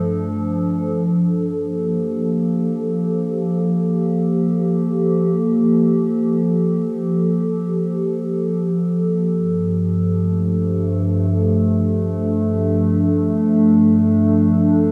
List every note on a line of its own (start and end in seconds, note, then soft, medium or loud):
0.00 0.94 G2 medium
0.00 14.92 F3 medium
0.00 0.95 A3 medium
0.00 3.04 D4 medium
0.00 14.92 A4 medium
1.49 12.61 G4 medium
1.53 9.31 A#3 medium
9.31 14.92 G2 medium
10.13 14.92 A3 medium
11.38 14.92 D4 medium